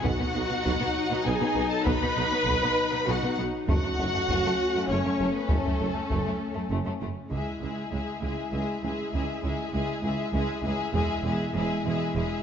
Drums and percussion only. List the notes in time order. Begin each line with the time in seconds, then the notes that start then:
0.05 taiko
0.65 taiko
1.87 taiko
2.47 taiko
3.68 taiko
4.29 taiko
5.49 taiko
6.10 taiko
7.31 taiko
10.95 taiko